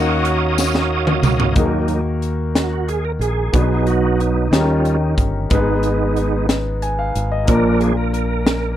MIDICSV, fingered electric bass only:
0, 0, Header, 1, 2, 480
1, 0, Start_track
1, 0, Key_signature, -6, "minor"
1, 0, Tempo, 657895
1, 1140, Time_signature, 6, 3, 24, 8
1, 6397, End_track
2, 0, Start_track
2, 0, Title_t, "Fingered electric bass"
2, 0, Program_c, 0, 33
2, 0, Note_on_c, 0, 39, 109
2, 870, Note_off_c, 0, 39, 0
2, 894, Note_on_c, 0, 37, 83
2, 1117, Note_off_c, 0, 37, 0
2, 1137, Note_on_c, 0, 39, 82
2, 2309, Note_off_c, 0, 39, 0
2, 2329, Note_on_c, 0, 34, 73
2, 2555, Note_off_c, 0, 34, 0
2, 2576, Note_on_c, 0, 35, 83
2, 3269, Note_off_c, 0, 35, 0
2, 3294, Note_on_c, 0, 39, 85
2, 3748, Note_off_c, 0, 39, 0
2, 3773, Note_on_c, 0, 31, 76
2, 3997, Note_off_c, 0, 31, 0
2, 4017, Note_on_c, 0, 32, 92
2, 5190, Note_off_c, 0, 32, 0
2, 5219, Note_on_c, 0, 32, 77
2, 5441, Note_off_c, 0, 32, 0
2, 5457, Note_on_c, 0, 34, 88
2, 6397, Note_off_c, 0, 34, 0
2, 6397, End_track
0, 0, End_of_file